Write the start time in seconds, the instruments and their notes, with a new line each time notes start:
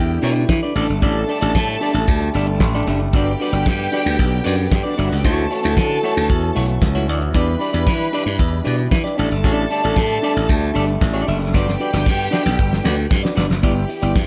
Already playing: slap bass E2, french horn section D3 G3 E4, string section G4 G5
0.10 muted clean electric guitar stroke
0.22 slap bass B2, clean electric guitar D4 G4 B4 D5, open hi-hat
0.35 muted clean electric guitar stroke, closed hi-hat
0.48 slap bass E3, muted clean electric guitar stroke, kick, snare, closed hi-hat
0.63 clean electric guitar D4 G4 B4 D5
0.75 slap bass A1, french horn section G3 A3, clean electric guitar D4 G4 A4 D5, string section A4 A5, open hi-hat
0.89 slap bass G1, muted clean electric guitar stroke, closed hi-hat
1.02 slap bass A1, clean electric guitar D4 G4 A4 D5, kick, closed hi-hat
1.28 clean electric guitar D4 G4 A4 D5, open hi-hat
1.41 slap bass A1, clean electric guitar D4 G4 A4 D5, closed hi-hat
1.55 slap bass A2, kick, snare, closed hi-hat
1.68 muted clean electric guitar stroke
1.81 clean electric guitar D4 G4 A4 D5, open hi-hat
1.94 slap bass A1, muted clean electric guitar stroke, closed hi-hat
2.07 slap bass D2, kick, closed hi-hat
2.21 muted clean electric guitar stroke
2.34 slap bass G1, clean electric guitar D4 G4 A4 D5, open hi-hat
2.47 muted clean electric guitar stroke, closed hi-hat
2.60 slap bass A1, muted clean electric guitar stroke, kick, snare, closed hi-hat
2.74 clean electric guitar D4 G4 A4 D5, snare
2.87 slap bass F#1, clean electric guitar D4 G4 A4 E5, open hi-hat
3.00 muted clean electric guitar stroke, closed hi-hat
3.13 slap bass G1, french horn section D3 B3, clean electric guitar D4 F#4 B4 D5, string section G4 G5, kick, closed hi-hat
3.40 clean electric guitar D4 F#4 B4 D5, open hi-hat
3.53 slap bass G1, clean electric guitar D4 F#4 B4 D5, closed hi-hat
3.66 slap bass G2, kick, snare, closed hi-hat
3.79 muted clean electric guitar stroke
3.92 clean electric guitar D4 F#4 B4 D5, open hi-hat
4.05 slap bass D2, muted clean electric guitar stroke, closed hi-hat
4.19 slap bass B1, kick, closed hi-hat
4.30 muted clean electric guitar stroke
4.44 slap bass F#2, clean electric guitar D4 F#4 B4 D5, open hi-hat
4.58 muted clean electric guitar stroke, closed hi-hat
4.71 slap bass G2, muted clean electric guitar stroke, kick, snare, closed hi-hat
4.83 clean electric guitar D4 F#4 B4 D5
4.89 string section D4 D5
4.97 slap bass G1, clean electric guitar D4 F#4 B4 D5, string section E4 E5, open hi-hat
5.07 string section F#4 F#5, muted clean electric guitar stroke
5.12 slap bass C#2, closed hi-hat
5.17 string section G4 G5
5.24 slap bass D2, french horn section E3 C#4 F#4, clean electric guitar A3 E4 F#4 C#5, string section A4 A5, kick, closed hi-hat
5.50 clean electric guitar A3 E4 F#4 C#5, open hi-hat
5.63 slap bass D2, clean electric guitar A3 E4 F#4 C#5, closed hi-hat
5.77 slap bass D3, kick, snare, closed hi-hat
5.90 muted clean electric guitar stroke
6.03 clean electric guitar A3 E4 F#4 C#5, open hi-hat
6.16 slap bass D2, muted clean electric guitar stroke, closed hi-hat
6.29 slap bass E2, kick, closed hi-hat
6.42 muted clean electric guitar stroke
6.55 slap bass B1, clean electric guitar A3 E4 F#4 C#5, open hi-hat
6.68 muted clean electric guitar stroke, closed hi-hat
6.82 slap bass C#2, muted clean electric guitar stroke, kick, snare, closed hi-hat
6.95 clean electric guitar A3 E4 F#4 C#5, snare
7.08 slap bass D2, clean electric guitar A3 E4 F#4 D5, open hi-hat
7.21 muted clean electric guitar stroke, closed hi-hat
7.33 slap bass E2, french horn section G3 D4, clean electric guitar D4 G4 B4 D5, string section B4 B5, kick, closed hi-hat
7.59 clean electric guitar D4 G4 B4 D5, open hi-hat
7.73 slap bass E2, clean electric guitar D4 G4 B4 D5, closed hi-hat
7.87 slap bass E3, kick, snare, closed hi-hat
7.99 muted clean electric guitar stroke
8.13 clean electric guitar D4 G4 B4 D5, open hi-hat
8.26 slap bass G2, muted clean electric guitar stroke, closed hi-hat
8.38 slap bass E2, kick, closed hi-hat
8.53 muted clean electric guitar stroke
8.64 slap bass B2, clean electric guitar D4 G4 B4 D5, open hi-hat
8.78 closed hi-hat
8.91 slap bass E3, muted clean electric guitar stroke, kick, snare, closed hi-hat
9.04 clean electric guitar D4 G4 B4 D5, snare
9.17 slap bass A1, french horn section D3 A3, clean electric guitar D4 G4 A4 D5, string section A4 A5, open hi-hat
9.31 slap bass G1, muted clean electric guitar stroke, closed hi-hat
9.44 slap bass A1, clean electric guitar D4 G4 A4 D5, kick, closed hi-hat
9.70 clean electric guitar D4 G4 A4 D5, open hi-hat
9.84 slap bass A1, clean electric guitar D4 G4 A4 D5, closed hi-hat
9.96 slap bass A2, kick, snare, closed hi-hat
10.10 muted clean electric guitar stroke
10.22 clean electric guitar D4 G4 A4 D5, open hi-hat
10.35 slap bass A1, muted clean electric guitar stroke, closed hi-hat
10.49 slap bass D2, kick, closed hi-hat
10.62 muted clean electric guitar stroke
10.74 slap bass G1, clean electric guitar D4 G4 A4 D5, open hi-hat
10.87 muted clean electric guitar stroke, closed hi-hat
11.01 slap bass A1, muted clean electric guitar stroke, kick, snare, closed hi-hat
11.13 clean electric guitar D4 G4 A4 D5
11.26 slap bass F#1, clean electric guitar D4 G4 A4 E5, open hi-hat
11.40 muted clean electric guitar stroke, closed hi-hat
11.53 slap bass G1, french horn section D3 B3, clean electric guitar D4 F#4 B4 D5, string section G4 G5, kick, snare
11.68 snare
11.80 clean electric guitar D4 F#4 B4 D5
11.93 slap bass G1, clean electric guitar D4 F#4 B4 D5, snare
12.06 slap bass G2, kick, snare
12.19 muted clean electric guitar stroke
12.31 clean electric guitar D4 F#4 B4 D5, snare
12.46 slap bass B1, snare
12.59 slap bass G1, kick
12.72 muted clean electric guitar stroke, snare
12.84 slap bass D2, clean electric guitar D4 F#4 B4 D5, snare
12.97 muted clean electric guitar stroke
13.10 slap bass G2, muted clean electric guitar stroke, kick, snare
13.23 clean electric guitar D4 F#4 B4 D5, snare
13.35 slap bass G1, clean electric guitar D4 F#4 B4 D5, snare
13.49 slap bass F#1, muted clean electric guitar stroke, snare
13.62 slap bass G1, french horn section E3 B3 G4, clean electric guitar B3 E4 G4 D5, string section G4 G5, kick, closed hi-hat
13.76 muted clean electric guitar stroke
13.88 muted clean electric guitar stroke, open hi-hat
14.02 slap bass G1, clean electric guitar B3 E4 G4 D5, closed hi-hat
14.16 slap bass G2, kick, snare, closed hi-hat